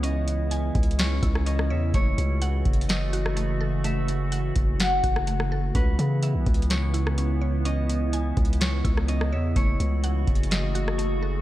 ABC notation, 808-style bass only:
X:1
M:4/4
L:1/16
Q:1/4=126
K:C#m
V:1 name="808-style bass" clef=bass
C,,6 C,,4 C,,4 E,,2 | F,,,2 C,,4 F,,,8- F,,,2- | F,,,6 F,,,4 F,,,6 | C,,2 C,3 B,,, C,,8- C,,2- |
C,,6 C,,4 C,,4 E,,2 | F,,,2 C,,4 F,,,8- F,,,2 |]